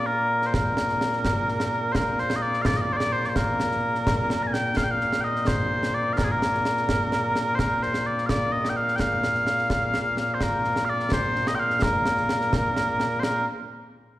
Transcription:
0.00 13.46 A#2 medium
0.00 13.46 A#3 medium
0.06 0.46 A#4 loud
0.42 snare soft
0.46 0.54 C5 medium
0.54 1.92 A#4 medium
0.54 concert bass drum medium
0.54 snare medium
0.77 snare medium
0.89 snare soft
1.01 snare medium
1.13 snare soft
1.25 concert bass drum medium
1.25 snare medium
1.49 snare soft
1.60 snare medium
1.92 2.20 A#4 medium
1.92 1.96 C5 medium
1.92 concert bass drum medium
1.92 snare medium
2.18 2.36 C5 loud
2.18 snare soft
2.30 snare medium
2.36 2.42 D#5 medium
2.42 2.62 D5 loud
2.53 snare soft
2.62 2.66 F5 loud
2.62 concert bass drum medium
2.62 snare loud
2.66 2.77 D5 loud
2.77 2.82 D#5 medium
2.82 2.93 D5 loud
2.93 2.97 C5 medium
2.93 3.12 D5 loud
3.00 snare medium
3.12 3.26 C5 loud
3.24 3.29 D5 medium
3.24 snare soft
3.29 3.36 C5 medium
3.36 4.43 A#4 medium
3.36 concert bass drum medium
3.36 snare medium
3.60 snare medium
3.71 snare soft
3.95 snare soft
4.07 concert bass drum medium
4.07 snare loud
4.30 snare medium
4.43 4.47 A#5 medium
4.47 4.53 G#5 medium
4.53 4.77 G5 loud
4.53 snare medium
4.77 4.84 F5 loud
4.77 concert bass drum medium
4.77 snare loud
4.84 4.91 G5 loud
4.91 5.21 F5 loud
5.01 snare soft
5.13 snare medium
5.21 5.47 D#5 medium
5.21 5.24 G5 medium
5.36 snare soft
5.47 5.94 C5 medium
5.47 concert bass drum medium
5.47 snare loud
5.83 snare medium
5.94 6.13 D5 loud
6.13 6.18 F5 medium
6.17 6.24 A#4 medium
6.17 concert bass drum medium
6.17 snare loud
6.24 6.32 G#4 medium
6.32 7.55 A#4 loud
6.42 snare medium
6.54 snare soft
6.65 snare medium
6.77 snare soft
6.89 concert bass drum medium
6.89 snare loud
7.12 snare medium
7.36 snare medium
7.55 7.59 C5 loud
7.55 concert bass drum medium
7.55 snare medium
7.59 7.83 A#4 loud
7.83 8.06 C5 medium
7.83 snare soft
7.94 snare medium
8.06 8.26 D5 medium
8.18 snare soft
8.26 8.52 D5 medium
8.26 8.29 F5 medium
8.26 concert bass drum soft
8.26 snare medium
8.52 8.69 D#5 loud
8.65 snare medium
8.69 8.76 G5 medium
8.76 8.96 F5 loud
8.88 snare soft
8.96 9.00 G5 loud
8.96 concert bass drum medium
8.96 snare medium
9.00 10.34 F5 loud
9.23 snare medium
9.35 snare soft
9.47 snare medium
9.59 snare soft
9.70 concert bass drum soft
9.70 snare medium
9.94 snare medium
10.17 snare medium
10.34 10.43 C5 medium
10.41 10.85 A#4 loud
10.41 concert bass drum soft
10.41 snare medium
10.64 snare soft
10.76 snare medium
10.85 10.89 F5 loud
10.89 11.13 D5 loud
11.00 snare soft
11.12 11.48 C5 loud
11.12 concert bass drum medium
11.12 snare loud
11.36 snare soft
11.47 11.55 D#5 loud
11.47 snare medium
11.55 11.59 G5 loud
11.59 11.83 F5 loud
11.70 snare soft
11.82 13.20 A#4 loud
11.82 concert bass drum medium
11.82 snare loud
12.06 snare medium
12.17 snare soft
12.29 snare medium
12.41 snare soft
12.53 concert bass drum medium
12.53 snare medium
12.76 snare medium
13.00 snare medium
13.20 13.24 C5 medium
13.20 snare loud
13.24 13.46 A#4 medium

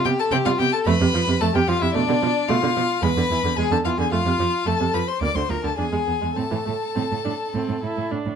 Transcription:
0.05 0.10 C3 medium
0.05 0.10 B3 medium
0.05 0.21 G4 medium
0.05 0.10 G5 medium
0.19 0.34 A4 medium
0.19 0.25 A5 medium
0.31 0.37 C3 medium
0.31 0.38 C4 medium
0.31 0.47 G4 medium
0.31 0.37 G5 loud
0.45 0.51 C3 medium
0.45 0.52 G3 soft
0.45 0.60 F4 medium
0.45 0.51 F5 medium
0.58 0.65 C3 medium
0.58 0.65 B3 medium
0.58 0.74 G4 medium
0.58 0.72 G5 loud
0.73 0.88 A4 medium
0.73 0.78 A5 medium
0.86 0.92 F2 medium
0.86 0.92 A3 medium
0.86 1.43 B4 medium
0.86 1.42 B5 loud
1.00 1.06 F2 medium
1.00 1.06 C3 medium
1.13 1.19 F2 medium
1.13 1.20 F3 medium
1.27 1.33 F2 medium
1.27 1.33 C3 medium
1.41 1.46 F2 medium
1.41 1.47 A3 medium
1.41 1.54 A4 medium
1.41 1.56 A5 medium
1.54 1.60 F2 medium
1.54 1.61 C3 medium
1.54 1.70 G4 medium
1.54 1.69 G5 medium
1.67 1.73 F2 medium
1.67 1.74 F3 medium
1.67 1.84 F4 medium
1.67 1.81 F5 medium
1.81 1.87 F2 medium
1.81 1.87 C3 medium
1.81 1.96 E4 medium
1.81 1.94 E5 medium
1.94 2.00 B2 medium
1.94 2.00 A3 medium
1.94 2.50 D4 medium
1.94 2.50 D5 loud
2.09 2.14 B2 medium
2.09 2.14 D3 medium
2.22 2.28 B2 medium
2.22 2.28 F3 soft
2.48 2.55 B2 medium
2.48 2.55 A3 medium
2.48 3.03 F4 medium
2.48 3.04 F5 medium
2.63 2.68 B2 soft
2.63 2.68 D3 soft
2.76 2.81 B2 medium
2.76 2.82 F3 medium
3.02 3.08 E2 medium
3.02 3.08 G#3 medium
3.02 3.56 B4 medium
3.02 3.58 B5 medium
3.17 3.22 E2 medium
3.17 3.23 D3 medium
3.30 3.35 E2 medium
3.30 3.36 E3 medium
3.43 3.49 E2 medium
3.43 3.50 D3 medium
3.57 3.63 E2 medium
3.57 3.63 G#3 medium
3.57 3.73 G#4 medium
3.57 3.71 G#5 medium
3.71 3.76 E2 soft
3.71 3.77 D3 soft
3.71 3.85 A4 medium
3.71 3.77 A5 medium
3.85 3.90 E2 soft
3.85 3.91 E3 medium
3.85 3.99 F4 medium
3.85 3.90 F5 medium
3.98 4.04 E2 medium
3.98 4.04 D3 medium
3.98 4.14 G#4 medium
3.98 4.11 G#5 medium
4.12 4.18 F2 medium
4.12 4.18 A3 medium
4.12 4.68 F4 medium
4.12 4.68 F5 medium
4.25 4.30 F2 medium
4.25 4.31 C3 soft
4.39 4.44 F2 medium
4.39 4.45 F3 soft
4.66 4.72 F2 medium
4.66 4.72 A3 medium
4.66 4.95 A4 medium
4.66 4.96 A5 medium
4.80 4.86 F2 soft
4.80 4.86 C3 soft
4.94 5.00 F2 soft
4.94 5.00 F3 medium
4.94 5.09 B4 medium
4.94 5.10 B5 medium
5.08 5.22 C5 medium
5.08 5.21 C6 medium
5.21 5.27 D2 medium
5.21 5.28 A#3 medium
5.21 5.36 D5 medium
5.21 5.37 D6 medium
5.36 5.41 D2 soft
5.36 5.42 D3 soft
5.36 5.52 C5 medium
5.36 5.51 C6 medium
5.50 5.55 D2 soft
5.50 5.55 F3 soft
5.50 5.65 A#4 medium
5.50 5.63 A#5 medium
5.64 5.70 D2 soft
5.64 5.69 D3 soft
5.64 5.77 A4 medium
5.64 5.78 A5 medium
5.78 5.84 E2 soft
5.78 5.84 D4 medium
5.78 6.35 G#4 medium
5.78 6.38 G#5 medium
5.92 5.98 E2 soft
5.92 5.98 G#3 soft
6.07 6.13 E2 soft
6.07 6.13 B3 soft
6.21 6.28 E2 soft
6.21 6.27 G#3 soft
6.36 6.43 A2 soft
6.36 6.42 C4 medium
6.36 8.08 A4 medium
6.36 8.11 A5 medium
6.51 6.58 A2 soft
6.51 6.57 E3 soft
6.66 6.73 A2 soft
6.66 6.72 A3 soft
6.95 7.02 A2 medium
6.95 7.03 C4 soft
7.11 7.17 A2 soft
7.25 7.32 A2 soft
7.25 7.33 D4 soft
7.53 7.60 A2 medium
7.53 7.82 C4 soft
7.69 7.74 A2 soft
7.83 7.89 A2 soft
7.83 8.13 E4 medium
7.97 8.03 A2 soft
8.11 8.17 A2 soft
8.11 8.36 D4 soft
8.26 8.32 A2 soft

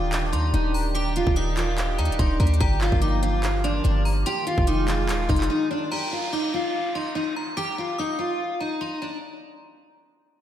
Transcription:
0.00 0.35 D#1 loud
0.00 2.57 D#3 medium
0.00 2.57 D4 medium
0.00 0.30 F4 medium
0.00 4.22 G4 medium
0.00 0.29 D6 medium
0.12 clap loud
0.12 closed hi-hat medium
0.33 0.53 D#2 loud
0.33 0.50 D#4 medium
0.33 0.72 C6 medium
0.33 closed hi-hat medium
0.54 1.24 D#1 loud
0.54 0.71 D#4 medium
0.54 closed hi-hat medium
0.74 0.94 A#5 medium
0.74 open hi-hat medium
0.95 1.12 G4 loud
0.95 1.34 D6 loud
0.95 closed hi-hat medium
1.16 1.34 F4 medium
1.16 closed hi-hat medium
1.27 2.00 D#1 loud
1.27 kick loud
1.36 1.54 D#4 medium
1.36 1.95 D#6 medium
1.36 closed hi-hat medium
1.57 1.96 F4 medium
1.57 clap loud
1.57 closed hi-hat medium
1.78 clap loud
1.78 closed hi-hat medium
1.98 2.11 D#2 loud
1.98 2.16 D#4 medium
1.98 2.18 A#5 medium
1.98 closed hi-hat medium
2.05 closed hi-hat medium
2.09 2.19 D#1 loud
2.09 closed hi-hat medium
2.19 2.39 D#1 loud
2.19 2.37 D#4 medium
2.19 2.39 C6 medium
2.19 kick loud
2.19 closed hi-hat medium
2.40 2.60 D#2 loud
2.40 2.57 D4 medium
2.40 2.60 A#5 medium
2.40 kick medium
2.40 closed hi-hat medium
2.47 closed hi-hat medium
2.54 closed hi-hat medium
2.60 2.91 G1 loud
2.60 4.24 F3 medium
2.60 4.24 A#3 medium
2.60 2.78 G4 loud
2.60 2.99 A#5 loud
2.60 kick loud
2.60 closed hi-hat medium
2.81 2.99 F4 medium
2.81 clap medium
2.92 3.81 G1 loud
2.92 kick loud
3.01 3.19 D#4 medium
3.01 3.60 D6 medium
3.01 closed hi-hat medium
3.23 3.62 F4 medium
3.23 closed hi-hat medium
3.43 clap loud
3.43 closed hi-hat medium
3.64 3.82 D4 medium
3.64 4.03 C6 medium
3.64 closed hi-hat medium
3.84 4.24 G1 loud
3.84 4.02 D4 medium
3.84 closed hi-hat medium
4.05 4.25 A#5 medium
4.05 open hi-hat medium
4.26 5.90 D#3 medium
4.26 5.90 G#3 medium
4.26 5.90 F4 medium
4.26 4.44 G4 loud
4.26 4.65 C6 loud
4.26 closed hi-hat medium
4.47 4.64 F4 medium
4.47 closed hi-hat medium
4.58 5.10 F1 loud
4.58 kick loud
4.67 4.85 D#4 medium
4.67 5.26 D6 medium
4.67 closed hi-hat medium
4.88 5.27 F4 medium
4.88 clap loud
4.88 closed hi-hat medium
5.09 5.29 D#1 loud
5.09 clap loud
5.09 closed hi-hat medium
5.29 5.49 F1 loud
5.29 5.46 D#4 medium
5.29 5.88 C6 medium
5.29 kick loud
5.29 closed hi-hat soft
5.36 closed hi-hat medium
5.41 clap medium
5.41 closed hi-hat medium
5.50 5.67 D#4 medium
5.71 5.88 D4 medium
5.92 6.09 G4 loud
5.92 6.30 A#5 loud
5.92 downlifter medium
6.12 6.30 F4 medium
6.33 6.50 D#4 medium
6.33 6.91 D6 medium
6.54 6.93 F4 medium
6.95 7.12 D#4 medium
6.95 7.34 C6 medium
7.15 7.33 D#4 medium
7.36 7.56 A#5 medium
7.57 7.74 G4 loud
7.57 7.96 D6 loud
7.78 7.95 F4 medium
7.98 8.16 D#4 medium
7.98 8.57 D#6 medium
8.19 8.58 F4 medium
8.60 8.78 D#4 medium
8.60 8.80 A#5 medium
8.81 8.98 D#4 medium
8.81 9.01 C6 medium
9.02 9.19 D4 medium
9.02 9.21 A#5 medium

